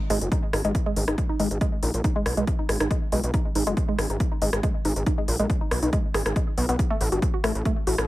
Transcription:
0.10 G#1 G#3, open hi-hat
0.21 F#1, closed hi-hat
0.32 D#4, kick, closed hi-hat
0.53 G#1 D#4, cross-stick, open hi-hat
0.65 G#1 G#3, closed hi-hat
0.75 kick, closed hi-hat
0.86 G#3
0.96 G#1, open hi-hat
1.08 G#1 D#4, cross-stick
1.18 kick, closed hi-hat
1.29 D#4
1.40 G#1 G#3, open hi-hat
1.51 G#1, closed hi-hat
1.61 G#3, kick, closed hi-hat
1.83 A#1 D#4, open hi-hat
1.94 A#1, closed hi-hat
2.04 D#4, kick, closed hi-hat
2.16 G#3
2.26 B1, cross-stick, open hi-hat
2.37 B1 G#3, closed hi-hat
2.47 kick, closed hi-hat
2.59 D#4
2.69 G#1, cross-stick, open hi-hat
2.80 G#1 D#4, cross-stick, closed hi-hat
2.91 G#3, kick, closed hi-hat
3.12 B1 G#3, open hi-hat
3.24 B1, closed hi-hat
3.34 D#4, kick, closed hi-hat
3.55 G#1 D#4, open hi-hat
3.67 F#1 G#3, closed hi-hat
3.77 kick, closed hi-hat
3.89 G#3
3.99 G#1, cross-stick, open hi-hat
4.10 G#1 D#4, closed hi-hat
4.20 kick, closed hi-hat
4.32 D#4
4.42 G#1 G#3, open hi-hat
4.53 G#1, cross-stick, closed hi-hat
4.63 G#3, kick, closed hi-hat
4.85 G#1 D#4, open hi-hat
4.96 G#1, closed hi-hat
5.06 D#4, kick, closed hi-hat
5.18 G#3
5.28 A#1, open hi-hat
5.39 A#1 G#3, closed hi-hat
5.50 kick, closed hi-hat
5.61 D#4
5.71 B1, cross-stick, open hi-hat
5.83 B1 D#4, closed hi-hat
5.93 G#3, kick, closed hi-hat
6.14 G#1 G#4, cross-stick, open hi-hat
6.26 G#1, cross-stick, closed hi-hat
6.36 G#3, kick, closed hi-hat
6.58 B1 B3, open hi-hat
6.69 B1 B3, closed hi-hat
6.79 kick, closed hi-hat
6.90 A3
7.01 A1, open hi-hat
7.12 G1 F#4, closed hi-hat
7.22 kick, closed hi-hat
7.34 F#4
7.44 A1 A3, cross-stick, open hi-hat
7.55 A1, closed hi-hat
7.65 A3, kick, closed hi-hat
7.87 A1 F#4, open hi-hat
7.98 A1, cross-stick, closed hi-hat

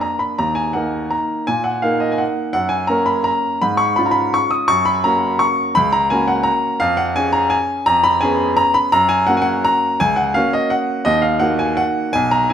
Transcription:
Already playing: A#3 D4 A#4
0.01 A#5
0.19 B5
0.39 D#2 A#5
0.55 G#5
0.73 A#3 D#4 A#4 F#5
1.11 A#5
1.47 A#2 G#5
1.64 F#5
1.82 A#3 D#4 A#4 F5
2.00 D#5
2.12 G#5
2.18 F#5
2.53 F#2 F#5
2.69 G#5
2.87 A#3 C#4 A#4 A#5
3.06 B5
3.24 A#5
3.62 G#2 B5
3.77 C#6
3.96 G#3 C#4 F4 B5
4.06 A#5
4.11 B5
4.34 C#6
4.51 D#6
4.68 F#2 C#6
4.85 B5
5.04 A#3 C#4 F#4 A#5
5.39 C#6
5.75 C#2 B5
5.93 A#5
6.10 A#3 C#4 F#4 G#5
6.28 F#5
6.43 A#5
6.80 F2 F5
6.97 F#5
7.16 C#4 G#4 G#5
7.33 A#5
7.50 G#5
7.86 F2 A#5
8.04 B5
8.21 B3 C#4 G#4 G#5
8.57 A#5
8.74 B5
8.92 F#2 A#5
9.09 G#5
9.27 A#3 C#4 F#4 F#5
9.37 G#5
9.42 F#5
9.65 A#5
10.00 C#2 G#5
10.16 F#5
10.34 A#3 C#4 F#4 F5
10.53 D#5
10.70 F#5
11.05 D#2 D#5
11.22 F5
11.39 A#3 D#4 F#4 F#5
11.59 G#5
11.77 F#5
12.13 B1 G#5
12.31 A#5
12.50 G#5

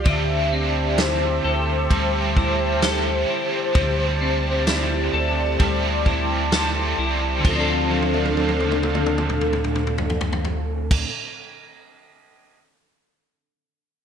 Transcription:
Already playing: F3 A#3 F4 G4 D5
0.05 D2 D3 G3 C4 E4 C5 E5 A5, kick, ride
0.09 A4 E5
0.52 C4 D5
0.98 E4 C5, snare, ride, tambourine
1.44 D2 A4
1.90 D2 G3 C4 E4 A4 C5, kick, ride
2.37 E4, kick
2.82 G3 C4 E4 A4, snare, ride, tambourine
3.30 E4
3.73 D2 D3 G3 C4 D5, kick, ride
3.77 E4 A4
4.21 C4
4.67 E4, snare, ride, tambourine
5.13 D2 A4
5.59 D2 G3 C4 E4 A4, kick, ride
6.06 E4, kick
6.51 G3 C4 E4 A4, snare, ride, tambourine
6.98 C2 E4
7.38 D3
7.44 D2 F3 A3 C4 D4 A4 C5 F5, kick, crash
7.48 C4 F4 A4
7.55 D4
7.60 A4
7.91 high tom
8.02 high tom
8.14 high tom
8.25 high tom
8.37 high tom
8.49 high tom
8.60 mid tom
8.72 mid tom
8.83 mid tom
8.95 mid tom
9.06 mid tom
9.18 mid tom
9.29 mid tom
9.41 mid tom
9.53 mid tom
9.64 mid tom
9.75 mid tom
9.87 mid tom
9.98 floor tom
10.10 floor tom
10.21 floor tom
10.33 floor tom
10.45 floor tom
10.91 kick, crash

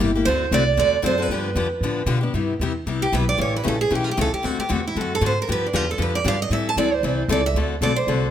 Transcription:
0.00 G1 E4 G4
0.15 A#3 E4 G4
0.25 D2 D3 A3 C4 F#4 A4 C5
0.51 C2 D3 A3 C4 F#4 A4 D5
0.77 E2 D3 A3 C4 F#4 A4 D5
1.02 F#2 D3 A3 C4 F#4 A4 C5
1.18 C4 F#4 A4
1.22 B4
1.28 G2 D3 F3 B3 D4 G4
1.55 F2 D3 F3 B3 D4 G4
1.81 A2 D3 F3 B3 D4 G4
2.06 B2 D3 F3 B3 D4 G4
2.21 B3 D4 G4
2.34 G2 C3 G3 B3 E4 G4
2.59 E2 C3 G3 B3 E4 G4
2.86 C2 C3 G3 B3 E4 G4
3.02 G4
3.12 B1 C3 G3 B3 E4 G4 B4
3.29 D5
3.38 A1 C#3 E3 A3 C#4 G4 C#5
3.56 B4
3.64 A#1 C#3 E3 A3 C#4 G4
3.68 A4
3.81 G#4
3.90 B1 C#3 E3 A3 C#4 G4
3.95 G4
4.04 F4
4.11 G4
4.17 C#2 C#3 E3 A3 C#4 G4 A4
4.33 G4, muted upright bass stroke
4.43 D2 D3 A3 C4 F#4 A4
4.58 G4, muted upright bass stroke
4.69 E2 D3 A3 C4 F#4 A4
4.87 E4
4.95 F#2 D3 A3 C4 F#4 A4
5.01 F#4
5.15 A4
5.21 G#2 D3 A3 C4 F#4 A4
5.26 C5
5.42 A#4
5.48 G2 D3 F3 B3 D4 G4
5.52 B4
5.66 D4
5.73 E2 D3 F3 B3 D4 F4 G4
5.91 A4
5.98 F2 D3 F3 B3 D4 G4 B4
6.15 D5
6.24 G2 D3 F3 B3 D4 G4 F5
6.42 D#5
6.50 A2 E3 G3 C4 E4 A4 E5
6.69 A5
6.76 D2 E3 G3 C4 E4 A4 D5
6.93 C5
7.03 C2 E3 G3 C4 E4 A4
7.28 C#2 E3 G3 C4 E4 A4
7.32 D5
7.46 E5
7.54 D2 D3 A3 C4 F#4 A4
7.81 B1 D3 A3 C4 F#4 A4 D5
7.96 C5
8.07 C2 D3 A3 C4 F#4 A4

